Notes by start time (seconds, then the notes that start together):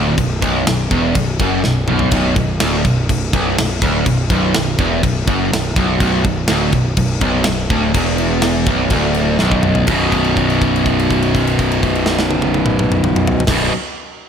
Already playing: D1 D2
0.17 B0 B1, kick, crash
0.41 B0 B1, kick, crash
0.67 B0 B1, snare, crash
0.91 E1 E2, kick, crash
1.15 B0 B1, kick, crash
1.40 F#1 F#2, kick, crash
1.64 B0 B1, snare
1.88 B0 B1, mid tom
1.99 floor tom
2.11 B0 B1, kick, splash, crash
2.36 B0 B1, kick, crash
2.60 D1 D2, snare, crash
2.85 B0 B1, kick, crash
3.09 B0 B1, kick, crash
3.33 B0 B1, kick, crash
3.58 B0 B1, snare, crash
3.82 D1 D2, kick, crash
4.06 B0 B1, kick, crash
4.30 B0 B1, kick, crash
4.54 B0 B1, snare, crash
4.79 E1 E2, kick, crash
5.03 B0 B1, kick, crash
5.27 F#1 F#2, kick, crash
5.52 B0 B1, snare, crash
5.76 B0 B1, kick, crash
6.00 B0 B1, kick, crash
6.24 B0 B1, kick, crash
6.48 D1 D2, snare, crash
6.72 B0 B1, kick, crash
6.97 B0 B1, kick, crash
7.21 B0 B1, kick, crash
7.44 B0 B1, snare, crash
7.70 D1 D2, kick, crash
7.94 E1 E2, kick, crash
8.18 crash
8.42 snare, crash
8.66 B0 B1, kick, crash
8.90 D1 D2, kick, crash
9.14 crash
9.39 B0 B1, snare
9.52 kick
9.63 mid tom
9.75 floor tom
9.87 B0 B1 F#2, kick, crash
9.91 B2
10.12 kick, crash
10.24 crash
10.37 kick, crash
10.50 crash
10.62 kick, crash
10.76 crash
10.86 kick, crash
10.99 crash
11.10 kick, crash
11.22 crash
11.35 kick, crash
11.47 crash
11.59 kick, crash
11.71 crash
11.83 kick, crash
11.95 crash
12.06 snare
12.19 snare
12.31 high tom
12.42 high tom
12.54 high tom
12.66 mid tom
12.79 mid tom
12.92 mid tom
13.04 mid tom
13.16 mid tom
13.27 floor tom
13.40 floor tom
13.47 B0 B1 F#2, kick, snare, crash
13.52 B2